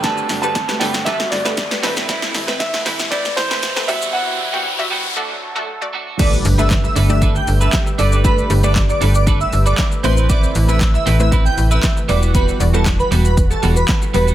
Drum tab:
CC |----------------|----------------|----------------|x---------------|
HH |x-o-x-o-x-o-x-o-|x-o-x-o-x-o-x-o-|----------------|x-o-x-o-x-o-x-o-|
SH |xxxxxxxxxxxxxxxx|xxxxxxxxxxxxxxxx|----------------|xxxxxxxxxxxxxxxx|
CP |----------------|----------------|----------------|----x-------x---|
SD |o-o-oooooooooooo|oooooooooooooo--|----------------|----o-------o---|
BD |o---o---o---o---|o---o---o-------|----------------|o---o---o---o---|

CC |----------------|----------------|----------------|
HH |x-o-x-o-x-o-x-o-|x-o-x-o-x-o-x-o-|x-o-x-o-x-o-x-o-|
SH |xxxxxxxxxxxxxxxx|xxxxxxxxxxxxxxxx|xxxxxxxxxxxxxxxx|
CP |----x-------x---|----x-------x---|----x-------x---|
SD |----o-------o---|----o-------o---|----o-------o---|
BD |o---o---o---o---|o---o---o---o---|o---o---o---o---|